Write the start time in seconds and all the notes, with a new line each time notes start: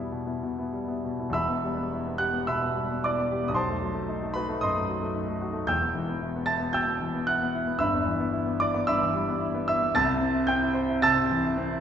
Already playing: B2 G3 B3 E4 E5
0.12 B2
0.26 B3 E4
0.43 B2
0.59 B3 E4
0.73 G3
0.88 B3 E4
1.04 B2
1.19 B3 E4
1.30 E1 E2 E6
1.34 E5 B5
1.48 B3
1.64 G3
1.77 B3
1.93 E4
2.07 B3
2.18 G4 F#5 F#6
2.33 B3
2.47 B2 E5 B5 E6
2.61 B3
2.77 G3
2.91 B3
3.04 E4 D5 D6
3.18 B3
3.32 G4
3.44 B3
3.48 B1 D#6
3.55 C5 A5 C6
3.70 A3
3.82 F#3
3.94 A3
4.08 D#4
4.23 A3
4.34 F#4 B4 B5
4.49 A3
4.61 F#2 D#5 C6 D#6
4.76 A3
4.89 F#3
5.02 A3
5.16 D#4
5.29 A3
5.42 F#4
5.53 A3
5.67 E1 E2 G5 E6 G6
5.81 B3
5.94 E3
6.08 B3
6.21 E4
6.36 B3
6.46 E4 A5 A6
6.59 B3
6.73 B2 G5 E6 G6
6.86 B3
7.01 E3
7.14 B3
7.27 E4 F#5 F#6
7.42 B3
7.55 E4
7.67 B3
7.79 G1 G2 E5 B5 E6
7.94 B3
8.06 E3
8.20 B3
8.33 E4
8.46 B3
8.60 E4 D5 D6
8.74 B3
8.87 G2 E5 B5 E6
9.02 E3
9.14 G3
9.29 B3
9.41 E4
9.54 B3
9.68 E4 E5 E6
9.82 B3
9.95 C2 C3 A5 E6 A6
10.07 E4
10.21 C4
10.34 E4
10.47 C4 G5 G6
10.62 E4
10.74 C5
10.88 E4
11.02 C3 A5 E6 A6
11.15 C4
11.31 E3
11.44 E4
11.58 C4
11.72 E4